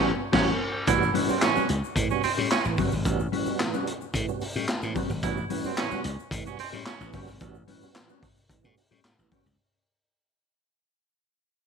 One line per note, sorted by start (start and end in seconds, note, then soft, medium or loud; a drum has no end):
0.00 0.11 A1 loud
0.00 0.11 G3 loud
0.00 0.12 G3 loud
0.00 0.11 B3 loud
0.00 0.11 C#4 loud
0.00 0.12 C#4 loud
0.00 0.12 F#4 loud
0.00 0.11 G4 loud
0.32 0.52 A1 loud
0.32 0.53 G3 loud
0.32 0.47 C#4 medium
0.32 0.52 C#4 loud
0.32 0.52 F#4 medium
0.32 0.52 G4 loud
0.32 kick loud
0.32 snare loud
0.32 crash medium
0.87 1.08 A1 loud
0.87 1.04 G3 medium
0.87 1.04 B3 medium
0.87 1.04 C#4 medium
0.87 1.09 E4 loud
0.87 1.04 F#4 medium
0.87 kick loud
0.87 closed hi-hat medium
0.87 shaker medium
1.02 shaker medium
1.14 1.31 A2 medium
1.14 1.31 E3 medium
1.14 1.34 G3 medium
1.14 1.34 C#4 medium
1.14 1.34 F#4 loud
1.14 open hi-hat medium
1.29 1.44 G3 medium
1.29 1.44 B3 medium
1.29 1.40 C4 medium
1.29 1.44 C#4 medium
1.29 1.44 F#4 medium
1.29 muted slap bass stroke soft
1.29 shaker medium
1.42 1.59 A2 medium
1.42 1.59 E3 medium
1.42 1.64 C#4 loud
1.42 muted clean electric guitar stroke soft
1.42 snare loud
1.42 clap medium
1.42 closed hi-hat medium
1.42 shaker medium
1.56 1.71 G3 medium
1.56 1.68 G3 medium
1.56 1.72 B3 medium
1.56 1.68 C#4 medium
1.56 1.69 F#4 medium
1.56 1.68 F#4 medium
1.56 muted slap bass stroke soft
1.56 shaker medium
1.69 1.81 C#2 medium
1.69 1.75 C#4 soft
1.69 1.75 F#4 soft
1.69 muted clean electric guitar stroke soft
1.69 closed hi-hat medium
1.69 shaker soft
1.83 muted clean electric guitar stroke soft
1.83 shaker medium
1.95 2.07 A2 loud
1.95 2.13 A2 medium
1.95 2.13 E3 medium
1.95 muted clean electric guitar stroke soft
1.95 kick loud
1.95 closed hi-hat loud
1.95 shaker medium
2.10 2.26 G3 medium
2.10 2.26 B3 medium
2.10 2.21 C#4 medium
2.10 2.23 C#4 medium
2.10 2.23 F#4 medium
2.10 muted clean electric guitar stroke soft
2.10 shaker medium
2.23 2.32 C4 loud
2.23 2.30 C#4 soft
2.23 2.30 F#4 medium
2.23 muted slap bass stroke medium
2.23 open hi-hat medium
2.23 shaker soft
2.37 2.48 A2 loud
2.37 2.50 G3 medium
2.37 2.51 C#4 medium
2.37 2.52 G4 medium
2.37 shaker soft
2.51 2.73 C#4 loud
2.51 2.57 C#4 soft
2.51 2.57 F#4 soft
2.51 muted clean electric guitar stroke soft
2.51 snare medium
2.51 clap medium
2.51 closed hi-hat medium
2.51 shaker medium
2.64 2.78 A1 medium
2.64 2.81 A2 medium
2.64 2.81 E3 medium
2.64 muted clean electric guitar stroke soft
2.64 shaker medium
2.78 2.89 G1 medium
2.78 2.98 G3 medium
2.78 2.95 G3 medium
2.78 2.95 B3 medium
2.78 2.95 C#4 medium
2.78 2.92 C#4 medium
2.78 2.95 F#4 medium
2.78 2.92 G4 medium
2.78 kick loud
2.78 open hi-hat medium
2.78 shaker medium
2.91 3.02 G#1 medium
2.91 muted clean electric guitar stroke medium
2.91 shaker medium
3.05 3.26 A1 loud
3.05 3.22 G3 medium
3.05 3.22 B3 medium
3.05 3.22 C#4 medium
3.05 3.22 F#4 loud
3.05 kick loud
3.05 closed hi-hat medium
3.05 shaker medium
3.20 shaker medium
3.32 3.49 A2 medium
3.32 3.49 E3 medium
3.32 3.51 G3 medium
3.32 3.52 C#4 loud
3.32 3.52 F#4 medium
3.32 open hi-hat medium
3.46 3.62 G3 medium
3.46 3.62 B3 medium
3.46 3.62 C#4 medium
3.46 3.62 F#4 medium
3.46 muted slap bass stroke soft
3.46 shaker medium
3.59 3.76 A2 medium
3.59 3.76 E3 medium
3.59 muted clean electric guitar stroke soft
3.59 snare loud
3.59 clap medium
3.59 closed hi-hat medium
3.59 shaker medium
3.74 3.89 G3 medium
3.74 3.86 G3 medium
3.74 3.89 B3 medium
3.74 3.87 C#4 medium
3.74 3.86 C#4 medium
3.74 3.87 F#4 medium
3.74 3.86 F#4 medium
3.74 shaker medium
3.87 3.93 C#4 soft
3.87 3.93 F#4 soft
3.87 muted clean electric guitar stroke soft
3.87 closed hi-hat medium
3.87 shaker soft
4.01 muted clean electric guitar stroke medium
4.01 shaker medium
4.14 4.25 A2 loud
4.14 4.31 A2 medium
4.14 4.31 E3 medium
4.14 muted clean electric guitar stroke soft
4.14 kick loud
4.14 closed hi-hat loud
4.14 shaker medium
4.28 4.43 G3 medium
4.28 4.44 B3 medium
4.28 4.40 C#4 medium
4.28 4.40 F#4 medium
4.28 muted clean electric guitar stroke soft
4.28 shaker medium
4.41 4.47 C#4 soft
4.41 4.47 F#4 soft
4.41 muted slap bass stroke soft
4.41 open hi-hat medium
4.41 shaker medium
4.56 4.65 A2 loud
4.56 4.67 G3 medium
4.56 4.68 C#4 medium
4.56 4.69 G4 medium
4.56 shaker soft
4.68 4.74 C#4 soft
4.68 4.74 F#4 soft
4.68 muted clean electric guitar stroke soft
4.68 snare loud
4.68 clap medium
4.68 closed hi-hat medium
4.68 shaker medium
4.82 4.93 A2 medium
4.82 4.98 A2 medium
4.82 4.98 E3 medium
4.82 muted clean electric guitar stroke soft
4.82 shaker medium
4.95 5.16 G3 medium
4.95 5.12 G3 medium
4.95 5.12 B3 medium
4.95 5.10 C#4 loud
4.95 5.13 C#4 medium
4.95 5.13 F#4 medium
4.95 5.09 G4 medium
4.95 kick loud
4.95 open hi-hat medium
4.95 shaker medium
5.10 5.20 G#1 medium
5.10 muted clean electric guitar stroke medium
5.10 shaker medium
5.23 5.44 A1 loud
5.23 5.39 G3 loud
5.23 5.40 B3 medium
5.23 5.40 C#4 medium
5.23 5.45 E4 loud
5.23 5.40 F#4 medium
5.23 kick loud
5.23 closed hi-hat medium
5.23 shaker medium
5.37 shaker soft
5.50 5.67 A2 medium
5.50 5.67 E3 medium
5.50 5.69 G3 medium
5.50 5.69 C#4 medium
5.50 5.70 F#4 medium
5.50 open hi-hat medium
5.64 5.80 G3 medium
5.64 5.80 B3 medium
5.64 5.75 C4 medium
5.64 5.80 C#4 medium
5.64 5.80 F#4 medium
5.64 muted slap bass stroke medium
5.64 shaker medium
5.77 5.94 A2 medium
5.77 5.94 E3 medium
5.77 5.99 C#4 loud
5.77 muted clean electric guitar stroke soft
5.77 snare loud
5.77 clap medium
5.77 closed hi-hat medium
5.77 shaker medium
5.91 6.07 G3 medium
5.91 6.03 G3 medium
5.91 6.07 B3 medium
5.91 6.03 C#4 medium
5.91 6.05 C#4 medium
5.91 6.04 F#4 medium
5.91 6.05 F#4 medium
5.91 muted slap bass stroke medium
5.91 shaker medium
6.04 6.16 C#2 medium
6.04 6.11 C#4 soft
6.04 6.11 F#4 medium
6.04 muted clean electric guitar stroke soft
6.04 closed hi-hat medium
6.04 shaker soft
6.19 muted clean electric guitar stroke soft
6.19 shaker medium
6.31 6.42 A2 loud
6.31 6.49 A2 medium
6.31 6.49 E3 medium
6.31 muted clean electric guitar stroke soft
6.31 kick loud
6.31 closed hi-hat loud
6.31 shaker medium
6.45 6.62 G3 medium
6.45 6.62 B3 medium
6.45 6.57 C#4 medium
6.45 6.59 C#4 medium
6.45 6.58 F#4 medium
6.45 muted clean electric guitar stroke medium
6.45 shaker medium
6.59 6.68 C4 loud
6.59 6.65 C#4 soft
6.59 6.65 F#4 soft
6.59 muted slap bass stroke medium
6.59 open hi-hat medium
6.59 shaker medium
6.72 6.83 A2 loud
6.72 6.84 G3 medium
6.72 6.85 C#4 medium
6.72 6.86 G4 medium
6.72 shaker soft
6.85 7.08 C#4 loud
6.85 6.93 C#4 soft
6.85 6.93 F#4 soft
6.85 muted clean electric guitar stroke medium
6.85 snare medium
6.85 clap medium
6.85 closed hi-hat loud
6.85 shaker medium
7.00 7.10 A1 medium
7.00 7.16 A2 medium
7.00 7.16 E3 medium
7.00 muted clean electric guitar stroke soft
7.00 shaker medium
7.13 7.25 G1 loud
7.13 7.33 G3 medium
7.13 7.30 G3 medium
7.13 7.30 B3 medium
7.13 7.28 C#4 medium
7.13 7.31 C#4 medium
7.13 7.31 F#4 medium
7.13 7.28 G4 loud
7.13 kick loud
7.13 open hi-hat medium
7.13 shaker medium
7.28 7.38 G#1 medium
7.28 muted clean electric guitar stroke soft
7.28 shaker medium
7.40 7.62 A1 loud
7.40 7.57 G3 medium
7.40 7.57 B3 medium
7.40 7.58 C#4 medium
7.40 7.58 F#4 loud
7.40 kick loud
7.40 closed hi-hat medium
7.40 shaker medium
7.55 shaker soft
7.67 7.85 A2 medium
7.67 7.85 E3 medium
7.67 7.87 G3 loud
7.67 7.87 C#4 medium
7.67 7.88 F#4 loud
7.67 open hi-hat medium
7.82 7.98 G3 medium
7.82 7.98 B3 medium
7.82 7.98 C#4 medium
7.82 7.98 F#4 medium
7.82 muted slap bass stroke soft
7.82 shaker medium
7.94 8.12 A2 medium
7.94 8.12 E3 medium
7.94 muted clean electric guitar stroke soft
7.94 snare loud
7.94 clap medium
7.94 closed hi-hat loud
7.94 shaker medium
8.09 8.25 G3 medium
8.09 8.21 G3 medium
8.09 8.25 B3 medium
8.09 8.22 C#4 medium
8.09 8.22 F#4 medium
8.09 shaker medium
8.22 8.29 C#4 soft
8.22 8.29 F#4 soft
8.22 muted clean electric guitar stroke soft
8.22 kick medium
8.22 open hi-hat medium
8.22 shaker soft
8.36 muted clean electric guitar stroke soft
8.36 shaker medium
8.50 8.66 A2 medium
8.50 8.66 E3 medium
8.50 muted clean electric guitar stroke soft
8.50 kick medium
8.50 closed hi-hat loud
8.50 shaker medium
8.63 8.74 A2 loud
8.63 8.79 G3 medium
8.63 8.79 B3 medium
8.63 8.76 C#4 medium
8.63 8.76 F#4 medium
8.63 muted clean electric guitar stroke soft
8.63 shaker medium
8.77 8.83 C#4 soft
8.77 8.83 F#4 soft
8.77 open hi-hat medium
8.77 shaker soft
8.91 9.01 A2 loud
8.91 9.03 G3 medium
8.91 9.04 C#4 medium
8.91 9.05 G4 medium
8.91 shaker soft
9.04 9.15 A2 medium
9.04 9.10 C#4 soft
9.04 9.10 F#4 soft
9.04 muted clean electric guitar stroke soft
9.04 snare loud
9.04 clap medium
9.04 closed hi-hat medium
9.04 shaker medium
9.19 9.29 A1 medium
9.19 9.34 A2 medium
9.19 9.34 E3 medium
9.19 muted clean electric guitar stroke soft
9.19 shaker medium
9.31 9.51 G3 medium
9.31 9.48 G3 medium
9.31 9.48 B3 medium
9.31 9.49 C#4 medium
9.31 9.46 C#4 loud
9.31 9.49 F#4 medium
9.31 9.46 G4 loud
9.31 kick loud
9.31 open hi-hat medium
9.31 shaker medium
9.46 9.56 C#2 medium
9.46 muted clean electric guitar stroke soft
9.46 shaker medium